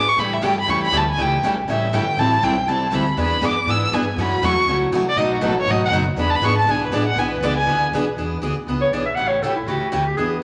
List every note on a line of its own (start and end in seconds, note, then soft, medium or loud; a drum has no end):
0.00 0.16 G#2 medium
0.08 0.21 C#6 loud
0.17 0.41 A2 medium
0.17 0.36 C#3 medium
0.17 0.36 E3 medium
0.17 0.37 G3 medium
0.17 0.36 A3 medium
0.17 0.36 C#4 medium
0.17 0.37 E4 medium
0.17 0.36 G4 medium
0.17 0.37 A4 medium
0.17 0.35 B5 medium
0.34 0.46 E5 medium
0.42 0.66 G2 medium
0.42 0.52 C#3 medium
0.42 0.53 E3 medium
0.42 0.53 G3 medium
0.42 0.53 A3 medium
0.42 0.53 C#4 loud
0.42 0.53 E4 loud
0.42 0.53 G4 medium
0.42 0.54 A4 loud
0.42 0.58 G5 loud
0.60 0.72 B5 loud
0.67 0.90 E2 loud
0.67 0.86 C#3 medium
0.67 0.86 E3 medium
0.67 0.86 G3 medium
0.67 0.86 A3 medium
0.67 0.86 C#4 medium
0.67 0.86 E4 medium
0.67 0.87 G4 medium
0.67 0.86 A4 medium
0.67 0.83 C#6 medium
0.84 0.99 B5 loud
0.91 1.16 D2 loud
0.91 1.03 C#3 medium
0.91 1.03 E3 medium
0.91 1.03 G3 medium
0.91 1.03 A3 medium
0.91 1.03 C#4 medium
0.91 1.03 E4 loud
0.91 1.03 G4 medium
0.91 1.03 A4 loud
0.97 1.09 A5 medium
1.10 1.23 G#5 loud
1.17 1.42 C#2 medium
1.17 1.36 C#3 medium
1.17 1.36 E3 medium
1.17 1.36 G3 medium
1.17 1.36 A3 medium
1.17 1.37 C#4 medium
1.17 1.36 E4 medium
1.17 1.37 G4 medium
1.17 1.36 A4 medium
1.22 1.45 G5 medium
1.42 1.67 B1 medium
1.42 1.54 C#3 medium
1.42 1.54 E3 medium
1.42 1.53 G3 medium
1.42 1.54 A3 medium
1.42 1.54 C#4 loud
1.42 1.54 E4 loud
1.42 1.54 G4 loud
1.42 1.54 A4 loud
1.68 1.92 A1 medium
1.68 1.87 C#3 medium
1.68 1.87 E3 medium
1.68 1.86 G3 medium
1.68 1.87 A3 medium
1.68 1.87 C#4 medium
1.68 1.86 E4 medium
1.68 1.87 G4 medium
1.68 1.86 A4 medium
1.68 1.96 E5 medium
1.93 2.16 G1 loud
1.93 2.03 C#3 medium
1.93 2.03 E3 loud
1.93 2.03 G3 loud
1.93 2.03 A3 medium
1.93 2.03 C#4 loud
1.93 2.03 E4 loud
1.93 2.04 G4 medium
1.93 2.03 A4 loud
1.93 2.20 G5 medium
2.17 2.41 A1 loud
2.17 2.36 E3 medium
2.17 2.37 G3 medium
2.17 2.37 C4 medium
2.17 2.37 E4 medium
2.17 2.37 A4 medium
2.17 2.45 A5 loud
2.41 2.65 B1 loud
2.41 2.53 E3 medium
2.41 2.53 G3 medium
2.41 2.53 C4 medium
2.41 2.54 E4 loud
2.41 2.54 A4 medium
2.41 2.70 G5 medium
2.66 2.91 C2 medium
2.66 2.86 E3 medium
2.66 2.86 G3 medium
2.66 2.86 C4 medium
2.66 2.87 E4 medium
2.66 2.87 A4 medium
2.66 2.96 A5 medium
2.92 3.16 D2 medium
2.92 3.03 E3 medium
2.92 3.03 G3 medium
2.92 3.03 C4 medium
2.92 3.03 E4 medium
2.92 3.04 A4 loud
2.92 3.19 B5 medium
3.16 3.41 E2 medium
3.16 3.36 E3 medium
3.16 3.36 B3 medium
3.16 3.36 D4 medium
3.16 3.36 G#4 medium
3.16 3.36 B4 medium
3.16 3.47 B5 medium
3.41 3.65 F#2 medium
3.41 3.53 E3 medium
3.41 3.53 B3 medium
3.41 3.53 D4 loud
3.41 3.54 G#4 loud
3.41 3.53 B4 loud
3.45 3.71 D6 loud
3.66 3.91 G#2 medium
3.66 3.86 E3 medium
3.66 3.86 B3 medium
3.66 3.86 D4 medium
3.66 3.86 G#4 medium
3.66 3.86 B4 medium
3.66 3.95 E6 loud
3.92 4.16 G2 loud
3.92 4.03 E3 medium
3.92 4.03 B3 medium
3.92 4.03 D4 medium
3.92 4.04 G#4 loud
3.92 4.04 B4 loud
3.92 4.22 G#5 medium
4.16 4.41 F#2 loud
4.16 4.36 C#3 medium
4.16 4.36 E3 medium
4.16 4.36 F#3 medium
4.16 4.36 A3 medium
4.16 4.36 C#4 medium
4.16 4.36 E4 medium
4.16 4.36 F#4 medium
4.16 4.37 A4 medium
4.21 4.46 B5 medium
4.42 4.66 E2 loud
4.42 4.53 C#3 medium
4.42 4.53 E3 medium
4.42 4.53 F#3 loud
4.42 4.53 A3 loud
4.42 4.53 C#4 loud
4.42 4.53 E4 loud
4.42 4.53 F#4 loud
4.42 4.54 A4 loud
4.42 4.69 C#6 loud
4.66 4.91 C#2 medium
4.66 4.86 C#3 medium
4.66 4.86 E3 medium
4.66 4.86 F#3 medium
4.66 4.86 A3 medium
4.66 4.86 C#4 medium
4.66 4.86 E4 medium
4.66 4.86 F#4 medium
4.66 4.86 A4 medium
4.91 5.15 C2 medium
4.91 5.03 C#3 medium
4.91 5.03 E3 medium
4.91 5.04 F#3 medium
4.91 5.03 A3 medium
4.91 5.03 C#4 medium
4.91 5.04 E4 loud
4.91 5.03 F#4 loud
4.91 5.04 A4 loud
5.09 5.19 D5 loud
5.16 5.40 B1 loud
5.16 5.36 B2 medium
5.16 5.36 F#3 medium
5.16 5.36 A3 medium
5.16 5.36 D#4 medium
5.16 5.36 F#4 medium
5.16 5.36 B4 medium
5.16 5.32 D#5 medium
5.34 5.46 F#4 medium
5.41 5.65 A1 medium
5.41 5.52 B2 medium
5.41 5.52 F#3 medium
5.41 5.52 A3 medium
5.41 5.53 D#4 medium
5.41 5.53 F#4 medium
5.41 5.52 B4 loud
5.45 5.58 A4 medium
5.61 5.72 C#5 loud
5.66 5.90 G#1 loud
5.66 5.86 B2 medium
5.66 5.86 F#3 medium
5.66 5.86 A3 medium
5.66 5.86 D#4 medium
5.66 5.86 F#4 medium
5.66 5.86 B4 medium
5.71 5.83 D#5 medium
5.85 5.91 F#5 loud
5.90 6.16 F#1 medium
5.90 6.03 B2 medium
5.90 6.03 F#3 medium
5.90 6.03 A3 loud
5.90 6.03 D#4 loud
5.90 6.03 F#4 medium
5.90 6.03 B4 medium
6.16 6.40 E1 loud
6.16 6.36 E3 medium
6.16 6.36 B3 medium
6.16 6.36 D4 medium
6.16 6.37 G#4 medium
6.16 6.36 B4 medium
6.20 6.32 B5 medium
6.30 6.37 A5 medium
6.35 6.46 B5 medium
6.40 6.65 G#1 medium
6.40 6.53 E3 medium
6.40 6.53 B3 loud
6.40 6.54 D4 medium
6.40 6.53 B4 medium
6.45 6.54 G#4 loud
6.45 6.58 C#6 loud
6.58 6.72 A5 medium
6.66 6.90 B1 loud
6.66 6.85 E3 medium
6.66 6.86 B3 medium
6.66 6.86 D4 medium
6.66 6.86 G#4 medium
6.66 6.86 B4 medium
6.71 6.83 G#5 medium
6.86 6.96 B4 medium
6.91 7.15 A1 loud
6.91 7.03 E3 medium
6.91 7.03 B3 medium
6.91 7.03 D4 loud
6.91 7.03 G#4 loud
6.91 7.03 B4 medium
6.91 7.07 D5 medium
7.07 7.20 F#5 loud
7.16 7.40 B1 medium
7.16 7.36 E3 medium
7.16 7.36 B3 medium
7.16 7.36 D4 medium
7.16 7.36 G#4 medium
7.16 7.36 B4 medium
7.16 7.31 G#5 medium
7.31 7.45 B4 medium
7.41 7.66 C#2 loud
7.41 7.53 E3 medium
7.41 7.53 B3 medium
7.41 7.53 D4 loud
7.41 7.54 G#4 loud
7.41 7.53 B4 loud
7.41 7.57 D5 loud
7.57 7.80 G#5 loud
7.66 7.91 D2 loud
7.66 7.86 E3 medium
7.66 7.86 B3 medium
7.66 7.86 D4 medium
7.66 7.87 G#4 medium
7.66 7.86 B4 medium
7.92 8.16 B1 loud
7.92 8.04 E3 medium
7.92 8.04 B3 medium
7.92 8.04 D4 medium
7.92 8.04 G#4 loud
7.92 8.03 B4 loud
8.17 8.41 E2 medium
8.17 8.36 E3 medium
8.17 8.36 B3 medium
8.17 8.36 D4 medium
8.17 8.36 G#4 medium
8.42 8.56 D2 medium
8.42 8.52 E3 medium
8.42 8.53 B3 medium
8.42 8.53 D4 loud
8.42 8.53 G#4 medium
8.57 muted upright bass stroke soft
8.67 8.91 C#2 medium
8.67 8.86 E3 medium
8.67 8.86 B3 medium
8.67 8.86 D4 medium
8.67 8.86 G#4 medium
8.81 8.95 C#5 loud
8.92 9.17 B1 medium
8.92 9.03 E3 medium
8.92 9.03 B3 medium
8.92 9.03 D4 medium
8.92 9.04 G#4 medium
8.92 9.05 D5 medium
9.06 9.17 E5 medium
9.15 9.42 A1 medium
9.15 9.36 C#3 medium
9.15 9.36 E3 medium
9.15 9.36 A3 medium
9.15 9.36 C#4 medium
9.15 9.36 G4 medium
9.15 9.30 F#5 loud
9.28 9.44 C#5 medium
9.42 9.66 B1 medium
9.42 9.53 C#3 medium
9.42 9.54 E3 medium
9.42 9.53 A3 medium
9.42 9.54 C#4 loud
9.42 9.54 G4 loud
9.42 9.55 A4 medium
9.56 9.69 E4 medium
9.66 9.80 C#2 medium
9.66 9.86 C#3 medium
9.66 9.86 E3 medium
9.66 9.86 A3 medium
9.66 9.86 C#4 medium
9.66 10.06 F#4 medium
9.66 9.86 G4 medium
9.82 muted upright bass stroke soft
9.92 10.17 D2 loud
9.92 10.03 C#3 medium
9.92 10.03 E3 medium
9.92 10.03 A3 medium
9.92 10.03 C#4 medium
9.92 10.03 G4 medium
10.07 10.17 G4 medium
10.17 10.42 E2 medium
10.17 10.36 E3 medium
10.17 10.36 B3 medium
10.17 10.36 D4 medium
10.17 10.26 G#4 medium
10.17 10.36 G#4 medium